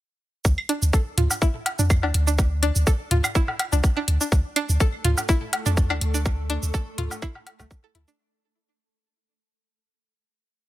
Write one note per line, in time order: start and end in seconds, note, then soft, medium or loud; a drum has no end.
0.45 0.55 D2 medium
0.45 kick loud
0.45 cabasa soft
0.58 claves medium
0.69 0.73 D4 loud
0.69 closed hi-hat medium
0.82 0.91 D2 medium
0.82 cabasa medium
0.93 0.97 A4 medium
0.93 kick loud
0.93 cabasa soft
1.18 1.27 D2 medium
1.18 1.23 F4 medium
1.18 closed hi-hat medium
1.18 mid tom medium
1.31 cabasa medium
1.31 low woodblock medium
1.42 1.47 E4 loud
1.42 kick loud
1.42 cabasa soft
1.66 closed hi-hat medium
1.66 low woodblock medium
1.79 2.05 F2 medium
1.79 1.84 D4 medium
1.79 cabasa medium
1.90 kick loud
1.90 cabasa soft
1.90 claves medium
2.03 2.12 D2 medium
2.03 2.05 D4 loud
2.03 low woodblock medium
2.14 2.71 D2 loud
2.14 closed hi-hat medium
2.27 2.32 D4 medium
2.27 cabasa medium
2.38 kick loud
2.38 cabasa soft
2.63 2.66 D4 loud
2.63 closed hi-hat medium
2.76 2.84 D2 medium
2.76 cabasa medium
2.87 2.91 A4 medium
2.87 kick loud
2.87 cabasa soft
3.11 3.21 D2 medium
3.11 3.17 F4 medium
3.11 closed hi-hat medium
3.11 mid tom medium
3.24 cabasa medium
3.24 claves medium
3.24 low woodblock medium
3.35 3.41 E4 loud
3.35 kick loud
3.35 cabasa soft
3.48 low woodblock medium
3.59 closed hi-hat medium
3.59 low woodblock medium
3.72 3.81 C2 medium
3.72 3.77 D4 medium
3.72 cabasa medium
3.84 kick loud
3.84 cabasa soft
3.97 3.99 D4 loud
4.08 4.18 D2 medium
4.08 closed hi-hat loud
4.21 4.26 D4 medium
4.21 cabasa soft
4.32 4.42 D2 loud
4.32 8.20 A3 medium
4.32 8.20 A4 medium
4.32 kick loud
4.32 cabasa soft
4.56 4.60 D4 loud
4.56 closed hi-hat loud
4.56 claves medium
4.69 4.78 D2 medium
4.69 cabasa medium
4.80 4.84 A4 medium
4.80 kick loud
4.80 cabasa soft
5.04 5.15 D2 loud
5.04 5.10 F4 medium
5.04 closed hi-hat loud
5.04 mid tom medium
5.17 cabasa medium
5.17 low woodblock medium
5.29 5.35 E4 loud
5.29 kick loud
5.29 cabasa soft
5.53 closed hi-hat medium
5.53 low woodblock medium
5.66 5.92 F2 medium
5.66 5.71 D4 medium
5.66 cabasa medium
5.77 kick loud
5.77 cabasa soft
5.90 5.99 D2 loud
5.90 5.92 D4 loud
5.90 claves medium
5.90 low woodblock medium
6.01 6.58 D2 loud
6.01 closed hi-hat loud
6.14 6.19 D4 medium
6.14 cabasa medium
6.26 kick loud
6.26 cabasa soft
6.50 6.54 D4 loud
6.50 closed hi-hat loud
6.63 6.71 D2 medium
6.63 cabasa soft
6.74 6.78 A4 medium
6.74 kick loud
6.74 cabasa soft
6.98 7.08 D2 medium
6.98 7.04 F4 medium
6.98 closed hi-hat loud
6.98 mid tom medium
7.11 cabasa medium
7.11 low woodblock medium
7.22 7.28 E4 loud
7.22 kick loud
7.22 cabasa soft
7.22 claves medium
7.35 low woodblock medium
7.47 closed hi-hat medium
7.47 low woodblock medium
7.60 7.68 C2 loud
7.60 7.65 A3 medium
7.60 kick medium
7.60 cabasa medium
7.60 low woodblock medium
7.71 kick loud
7.71 cabasa soft
7.84 7.87 A4 loud
7.95 8.05 D2 medium
7.95 7.97 E4 medium
7.95 closed hi-hat loud
8.08 8.11 D4 loud
8.08 cabasa soft